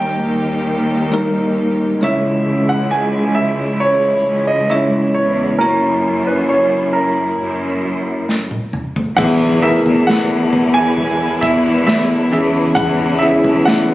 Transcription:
Already playing: cello section D#2, string section D#3 G3 G4 A#4, tine electric piano D#3 G3 A#3 D#4 A#4, grand piano G5
0.23 cello section D#2
1.12 tine electric piano G3 A#3 D#4 A#4
2.01 cello section C#2, tine electric piano C#3 G#3 C#4 E4 C#5, string section C#3 E3 G#3 E4, grand piano E5
2.69 grand piano F#5
2.91 grand piano G#5
3.35 grand piano E5
3.80 grand piano C#5
4.26 cello section C#2
4.47 grand piano D#5
4.69 tine electric piano G#3 C#4 E4 C#5, grand piano E5
5.14 cello section E2, grand piano C#5
5.58 cello section F#2, string section F#3 A#3 E4, tine electric piano A#3 E4 F#4 C#5, grand piano A#4
6.27 grand piano B4
6.49 grand piano C#5
6.93 grand piano A#4
7.39 cello section F#2
8.29 snare
8.51 high tom
8.73 mid tom
8.96 floor tom
9.17 cello section E2, string section B2 E3 G#3 E4, tine electric piano E3 B3 E4 G#4 E5, grand piano F#5, kick, floor tom, crash, impact
9.62 tine electric piano B3 E4 G#4 A#4, grand piano E5
9.86 cello section E2, floor tom
10.07 cello section E2, grand piano F#5, snare
10.53 floor tom
10.74 grand piano G#5
10.98 floor tom
11.41 cello section E2, grand piano E5, kick
11.87 grand piano E5, snare
12.32 cello section E2, string section C#3, tine electric piano E3 C#4 E4 G#4 E5
12.75 cello section E2, grand piano F#5, kick, floor tom
13.19 tine electric piano C#4 E4, grand piano E5
13.23 tine electric piano G#4 E5
13.44 cello section E2, floor tom
13.65 grand piano F#5, snare

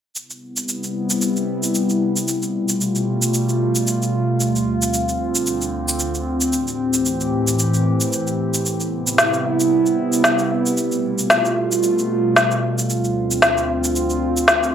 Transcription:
0.15 ambient pad C3 G3 B3 E4, shaker
0.30 shaker
0.56 shaker
0.68 shaker
0.84 shaker
1.10 shaker
1.21 shaker
1.36 shaker
1.63 shaker
1.75 shaker
1.90 shaker
2.16 shaker
2.27 ambient pad B2 G3 A3 F4, shaker
2.42 shaker
2.69 shaker
2.81 shaker
2.95 shaker
3.22 shaker
3.34 shaker
3.49 shaker
3.75 shaker
3.87 shaker
4.02 shaker
4.39 ambient pad D2 D3 C4, shaker
4.56 shaker
4.82 shaker
4.94 shaker
5.09 shaker
5.35 shaker
5.46 shaker
5.61 shaker
5.88 shaker
5.99 shaker
6.15 shaker
6.41 shaker
6.51 ambient pad A2 E3 G4, shaker
6.68 shaker
6.93 shaker
7.05 shaker
7.20 shaker
7.47 shaker
7.59 shaker
7.74 shaker
8.00 shaker
8.13 shaker
8.27 shaker
8.54 shaker
8.64 ambient pad C3 G3 B3 E4, shaker
8.80 shaker
9.07 shaker
9.18 snare, shaker
9.34 shaker
9.60 shaker
9.86 shaker
10.13 shaker
10.24 snare, shaker
10.39 shaker
10.66 shaker
10.77 ambient pad B2 A3 F4, shaker
10.92 shaker
11.18 shaker
11.30 snare, shaker
11.45 shaker
11.72 shaker
11.83 shaker
11.99 shaker
12.36 snare, shaker
12.51 shaker
12.78 shaker
12.88 ambient pad D2 D3 C4 F4, shaker
13.04 shaker
13.31 shaker
13.42 snare, shaker
13.58 shaker
13.84 shaker
13.96 shaker
14.10 shaker
14.37 shaker
14.48 snare, shaker
14.63 shaker

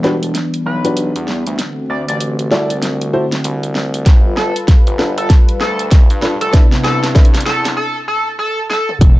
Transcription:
Already playing: analog synth bass E1, analog synth pad E3 G3 B3 D4
0.04 grand piano D4 F#4 G4 B4, snare
0.23 closed hi-hat
0.35 snare, closed hi-hat
0.54 closed hi-hat
0.66 analog synth bass B1, analog synth lead B4
0.85 grand piano D4 F#4 G4 B4, closed hi-hat
0.97 closed hi-hat
1.16 analog synth bass E2, closed hi-hat
1.28 snare
1.47 analog synth bass D2, closed hi-hat
1.58 analog synth pad D3 A3 C4 F#4, snare, closed hi-hat
1.90 analog synth bass D2, analog synth lead D5
2.08 analog synth bass A1, analog synth lead D5, closed hi-hat
2.21 closed hi-hat
2.39 closed hi-hat
2.51 analog synth bass C2, grand piano E4 F#4 A4 D5, snare
2.70 closed hi-hat
2.82 snare, closed hi-hat
3.01 closed hi-hat
3.13 grand piano E4 F#4 A4 C5
3.32 snare, closed hi-hat
3.44 analog synth bass C2, closed hi-hat
3.63 closed hi-hat
3.75 snare
3.94 closed hi-hat
4.06 analog synth bass G1, analog synth pad G3 F4 A4 B4, kick, snare, closed hi-hat
4.37 analog synth lead A4, snare
4.56 closed hi-hat
4.68 kick, snare, closed hi-hat
4.87 analog synth bass G1, closed hi-hat
4.99 grand piano D4 F4 A4 B4, snare
5.18 analog synth lead A4, closed hi-hat
5.30 kick, snare, closed hi-hat
5.49 closed hi-hat
5.60 analog synth bass D2, analog synth lead A4, snare
5.79 closed hi-hat
5.91 kick, snare, closed hi-hat
6.10 analog synth bass G2, closed hi-hat
6.22 grand piano D4 F4 A4 B4, snare
6.41 analog synth bass F1, analog synth lead A4, closed hi-hat
6.53 analog synth pad C3 B3 D4 E4, grand piano D4 E4 A4 B4, kick, snare, closed hi-hat
6.72 snare
6.84 analog synth bass C2, analog synth lead A4, snare
7.03 analog synth bass G2, snare, closed hi-hat
7.15 grand piano D4 E4 A4 B4, kick, snare, closed hi-hat
7.25 closed hi-hat
7.34 snare, closed hi-hat
7.41 closed hi-hat
7.45 analog synth bass E2, analog synth lead A4, snare
7.65 snare, closed hi-hat
7.76 analog synth lead A4
8.08 analog synth lead A4
8.39 analog synth lead A4
8.70 analog synth lead A4, snare
8.89 mid tom
9.01 analog synth bass E1, analog synth pad E3 G3 B3 D4, kick, closed hi-hat

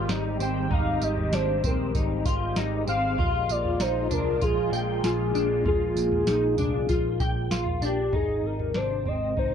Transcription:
Already playing: analog synth pad D#3 G3 G#3 C4 G4
0.09 picked electric bass G#1, clean electric guitar D#4, snare, tambourine
0.39 picked electric bass G#1, clean electric guitar C4, soft synth lead G5, tambourine
0.71 picked electric bass G#1, clean electric guitar D#4, soft synth lead F5, kick, floor tom
1.02 picked electric bass G#1, soft synth lead D#5, tambourine
1.17 floor tom
1.33 picked electric bass G#1, clean electric guitar D4, soft synth lead C5, snare, tambourine
1.64 picked electric bass A#1, clean electric guitar C4, soft synth lead A#4, kick, floor tom, tambourine
1.95 picked electric bass G#1, clean electric guitar D#4, kick, floor tom, tambourine
2.26 picked electric bass G#1, clean electric guitar F4, kick, tambourine
2.56 picked electric bass G#1, clean electric guitar D#4, snare, tambourine
2.87 picked electric bass G#1, clean electric guitar C4, soft synth lead F5, tambourine
3.18 picked electric bass A#1, analog synth pad A#2 F3 A#3 F4, clean electric guitar F4, kick, floor tom
3.49 picked electric bass A#1, soft synth lead D5, tambourine
3.65 floor tom
3.80 picked electric bass A#1, clean electric guitar D#4, soft synth lead C5, snare, tambourine
4.10 picked electric bass C2, clean electric guitar D4, soft synth lead A#4, floor tom, tambourine
4.42 picked electric bass A#1, clean electric guitar F4, soft synth lead G#4, kick, floor tom, tambourine
4.72 picked electric bass A#1, clean electric guitar G5, tambourine
5.04 picked electric bass A#1, clean electric guitar F4, soft synth lead G#4, snare, tambourine
5.34 clean electric guitar D4, tambourine
5.66 picked electric bass A#1, clean electric guitar F4, soft synth lead G#4, kick, floor tom
5.96 picked electric bass A#1, tambourine
6.12 floor tom
6.27 picked electric bass A#1, clean electric guitar D#4, snare, tambourine
6.58 picked electric bass C2, clean electric guitar D4, floor tom, tambourine
6.89 picked electric bass A#1, clean electric guitar F4, kick, floor tom, tambourine
7.20 picked electric bass A#1, clean electric guitar G5, kick, tambourine
7.51 picked electric bass A#1, clean electric guitar F4, snare, tambourine
7.66 floor tom
7.81 picked electric bass A#1, clean electric guitar D4, soft synth lead G4, tambourine
8.13 picked electric bass G#1, analog synth pad C3 G#3 C4 G5, clean electric guitar D#4, soft synth lead G#4, kick, floor tom
8.43 picked electric bass G#1, soft synth lead A#4
8.59 floor tom
8.74 picked electric bass G#1, clean electric guitar D4, soft synth lead C5, snare
9.06 picked electric bass G#1, clean electric guitar C4, soft synth lead D#5, floor tom
9.37 picked electric bass G#1, clean electric guitar D#4, soft synth lead C5, kick, floor tom

